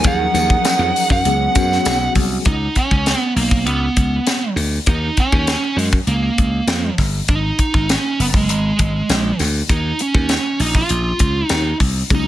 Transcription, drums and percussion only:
0.04 kick, closed hi-hat, tambourine
0.35 closed hi-hat, tambourine
0.50 kick
0.65 snare, closed hi-hat, tambourine
0.96 open hi-hat, tambourine
1.10 kick, tambourine
1.25 closed hi-hat, tambourine
1.55 kick, closed hi-hat, tambourine
1.71 snare, tambourine
1.85 snare, closed hi-hat, tambourine
2.02 tambourine
2.15 kick, open hi-hat, tambourine
2.45 kick, closed hi-hat
2.75 kick, closed hi-hat
2.91 kick
3.06 snare, closed hi-hat
3.37 open hi-hat
3.51 kick
3.67 closed hi-hat
3.97 kick, closed hi-hat
4.27 snare, closed hi-hat
4.57 open hi-hat
4.86 kick, closed hi-hat
5.17 kick, closed hi-hat
5.32 kick
5.47 snare, closed hi-hat
5.79 open hi-hat
5.93 kick
6.07 closed hi-hat
6.38 kick, closed hi-hat
6.68 snare, closed hi-hat
6.98 kick, snare, open hi-hat
7.28 kick, closed hi-hat
7.59 kick, closed hi-hat
7.74 kick
7.89 snare, closed hi-hat
8.20 open hi-hat
8.34 kick
8.49 closed hi-hat
8.79 kick, closed hi-hat
9.10 snare, closed hi-hat
9.39 snare, open hi-hat
9.69 kick, closed hi-hat
9.99 closed hi-hat
10.15 kick
10.29 snare, closed hi-hat
10.60 open hi-hat
10.75 kick
10.89 closed hi-hat
11.19 kick, closed hi-hat
11.49 snare, closed hi-hat
11.80 kick, open hi-hat
12.10 kick, closed hi-hat, tambourine

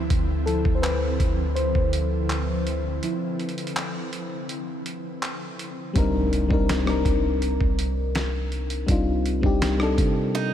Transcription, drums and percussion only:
0.10 kick, closed hi-hat
0.47 closed hi-hat
0.65 kick
0.84 clap, closed hi-hat
1.20 kick, closed hi-hat
1.56 closed hi-hat
1.75 kick
1.93 closed hi-hat
2.29 clap, closed hi-hat
2.67 closed hi-hat
3.03 closed hi-hat
3.39 closed hi-hat
3.49 closed hi-hat
3.58 closed hi-hat
3.67 closed hi-hat
3.76 clap, closed hi-hat
4.13 closed hi-hat
4.49 closed hi-hat
4.86 closed hi-hat
5.22 clap, closed hi-hat
5.59 closed hi-hat
5.96 kick, closed hi-hat
6.33 closed hi-hat
6.51 kick
6.69 snare, closed hi-hat
6.87 cross-stick
7.05 kick, closed hi-hat
7.42 closed hi-hat
7.61 kick
7.79 closed hi-hat
8.15 snare, closed hi-hat
8.52 closed hi-hat
8.70 closed hi-hat
8.88 kick, closed hi-hat
9.26 closed hi-hat
9.43 kick
9.62 snare, closed hi-hat
9.80 cross-stick
9.98 kick, closed hi-hat
10.35 closed hi-hat

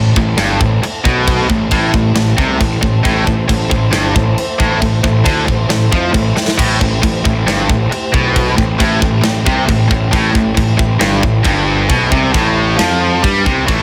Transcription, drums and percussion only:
0.16 kick
0.38 snare, crash
0.61 kick
0.83 crash
1.05 kick
1.28 kick, crash
1.50 kick
1.71 kick, crash
1.94 kick
2.16 snare, crash
2.38 kick
2.60 kick, crash
2.83 kick
3.05 kick, crash
3.27 kick
3.49 kick, crash
3.71 kick
3.93 snare, crash
4.16 kick
4.38 crash
4.60 kick
4.82 kick, crash
5.04 kick
5.25 kick, crash
5.48 kick
5.70 snare, crash
5.92 kick
6.14 kick, crash
6.37 snare
6.48 snare
6.59 kick, crash
6.81 kick
7.03 kick, crash
7.25 kick
7.48 snare, crash
7.69 kick
7.92 crash
8.14 kick
8.36 kick, crash
8.58 kick
8.80 kick, crash
9.02 kick
9.23 snare, crash
9.46 kick
9.69 kick, crash
9.91 kick
10.13 kick, crash
10.35 kick
10.57 kick, crash
10.79 kick
11.01 snare, crash
11.23 kick
11.44 kick, crash
11.89 kick, crash
12.12 kick
12.34 kick, crash
12.79 snare, crash
13.24 kick, crash
13.46 kick
13.68 kick, ride

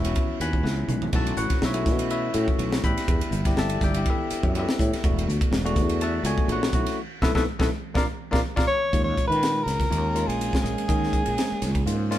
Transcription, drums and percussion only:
0.05 ride bell
0.15 kick, ride bell
0.41 hi-hat pedal, ride bell
0.53 kick
0.66 snare
0.89 hi-hat pedal, mid tom
1.02 floor tom
1.13 kick, ride bell, splash
1.27 ride bell
1.37 hi-hat pedal
1.50 kick, snare, ride bell
1.62 snare
1.74 ride bell
1.86 kick, snare, hi-hat pedal
1.99 ride bell
2.10 ride bell
2.34 hi-hat pedal, ride bell
2.48 kick
2.59 ride bell
2.73 snare
2.84 kick, hi-hat pedal
2.98 snare, ride bell
3.08 kick, ride bell
3.21 ride bell
3.32 hi-hat pedal
3.45 kick, snare, ride bell
3.57 snare
3.69 ride bell
3.81 kick, snare, hi-hat pedal
3.94 ride bell
4.06 kick, ride bell
4.30 hi-hat pedal, ride bell
4.43 kick
4.55 ride bell
4.69 snare
4.79 kick, hi-hat pedal
4.93 snare, ride bell
5.04 kick, ride bell
5.19 ride bell
5.29 hi-hat pedal
5.41 kick, ride bell
5.53 snare
5.66 ride bell
5.76 kick, snare, hi-hat pedal
5.89 ride bell
6.01 ride bell
6.25 hi-hat pedal, ride bell
6.38 kick
6.49 ride bell
6.63 snare
6.73 kick, hi-hat pedal
6.86 snare, ride bell
7.22 kick, snare
7.35 kick, snare
7.60 kick, snare
7.95 kick, snare
8.33 kick, snare
8.57 kick, snare
8.93 kick, hi-hat pedal, ride
9.18 kick, hi-hat pedal, ride
9.32 ride
9.43 snare, hi-hat pedal, ride
9.68 snare, hi-hat pedal, ride
9.80 kick, snare, ride
9.92 hi-hat pedal, ride
10.16 hi-hat pedal, ride
10.30 ride
10.41 hi-hat pedal, ride
10.53 kick, snare
10.65 hi-hat pedal, ride
10.78 ride
10.89 kick, hi-hat pedal, ride
11.03 snare
11.13 kick, hi-hat pedal, ride
11.26 ride
11.38 snare, hi-hat pedal, ride
11.62 snare, hi-hat pedal, ride
11.75 kick, ride
11.87 hi-hat pedal, ride
12.12 snare, hi-hat pedal, ride

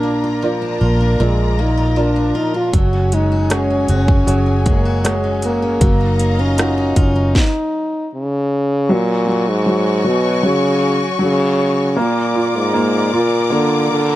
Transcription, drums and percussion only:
2.73 kick, closed hi-hat
3.12 closed hi-hat
3.50 cross-stick, closed hi-hat
3.88 closed hi-hat
4.08 kick
4.28 closed hi-hat
4.66 kick, closed hi-hat
5.05 cross-stick, closed hi-hat
5.42 closed hi-hat
5.81 kick, closed hi-hat
6.19 closed hi-hat
6.58 cross-stick, closed hi-hat
6.96 kick, closed hi-hat
7.35 kick, snare

